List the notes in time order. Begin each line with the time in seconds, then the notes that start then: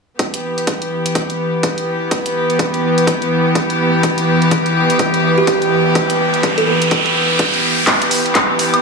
0.19 E3 B3 G4, kick, closed hi-hat
0.34 closed hi-hat
0.58 closed hi-hat
0.67 kick, closed hi-hat
0.82 closed hi-hat
1.06 closed hi-hat
1.15 kick, closed hi-hat
1.30 closed hi-hat
1.63 kick, closed hi-hat
1.78 closed hi-hat
2.11 kick, closed hi-hat
2.26 closed hi-hat
2.50 closed hi-hat
2.59 kick, closed hi-hat
2.74 closed hi-hat
2.98 closed hi-hat
3.07 kick, closed hi-hat
3.22 closed hi-hat
3.55 kick, closed hi-hat
3.70 closed hi-hat
4.03 kick, closed hi-hat, riser
4.18 closed hi-hat
4.42 closed hi-hat
4.51 kick, closed hi-hat
4.66 closed hi-hat
4.90 closed hi-hat
4.99 kick, closed hi-hat
5.14 closed hi-hat
5.38 G4
5.47 kick, closed hi-hat
5.62 closed hi-hat
5.95 kick, closed hi-hat
6.10 closed hi-hat
6.34 closed hi-hat
6.43 kick, closed hi-hat
6.58 A4, closed hi-hat
6.67 A4
6.82 closed hi-hat
6.91 kick, closed hi-hat
7.06 closed hi-hat
7.39 kick, closed hi-hat
7.54 closed hi-hat
7.87 E3 B3 G4, kick, clap, closed hi-hat, riser
8.02 closed hi-hat
8.11 open hi-hat
8.26 closed hi-hat
8.35 kick, clap, closed hi-hat
8.59 open hi-hat
8.74 closed hi-hat, high woodblock